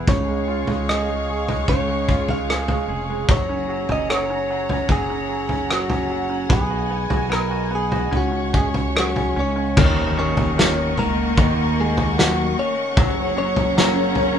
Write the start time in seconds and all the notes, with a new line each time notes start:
Already playing: B3 G#4
0.07 C#2 C#3 C#5 F5 C#6, kick, floor tom
0.28 G#3
0.48 F4
0.67 C#2 G#3, floor tom
0.89 G#4 D#5, cross-stick
1.09 G#3
1.29 G#4
1.48 G#3, floor tom
1.68 C#2 C#3 C#5, kick
1.89 G#3
2.09 F4, kick
2.28 G#3 F5, floor tom
2.49 G#4, cross-stick
2.68 G#3, floor tom
2.88 F1 G#4
3.09 G#3
3.29 F#1 F#3 C#5 F#5 A#5, kick, floor tom
3.49 C#4
3.69 F#3
3.89 F#1 C#4 D#5, floor tom
4.09 F#3 C#5, cross-stick
4.30 C#4
4.51 F#3
4.69 C#4, floor tom
4.89 F#1 F#3 G#4, kick, floor tom
5.10 C#4
5.29 F#3
5.49 C#4, floor tom
5.70 F#3 F#4, cross-stick
5.90 C#4, floor tom
6.10 F#3
6.30 C#4
6.49 B1 B3 G#4 D#5 G#5, kick, floor tom
6.70 F#4
6.90 B3
7.10 B1 F#4, floor tom
7.30 B3 A#4, cross-stick
7.51 F#4
7.71 B3
7.75 G#4
7.92 F#4, floor tom
8.11 C#2 C#4 C#5 C#6, floor tom
8.17 F#4
8.32 C#4
8.53 G#3 C#4 G#4, kick
8.74 C#4, floor tom
8.96 F#3 C#4 F#4, cross-stick
9.16 C#4, floor tom
9.36 C#2 C#4
9.40 C#5
9.56 C#4
9.77 D#2 D#3 A#3 A#4 D#5 F#5 C#6, kick, floor tom, crash, impact
10.17 D#3 C#4 C#5
10.37 floor tom
10.58 D#3, snare
10.97 C#2 A#3 A#4, floor tom
11.37 D#2 D#3, kick, floor tom
11.80 G#3 G#4
11.97 floor tom
12.18 D#3 F#3 F#4, snare
12.59 C#4 C#5
12.97 F#1 F#3 C#4 G#4 A#5, kick, floor tom
13.37 F#3 C#4 C#5
13.56 floor tom
13.77 F#3 A#3 A#4, snare
14.15 floor tom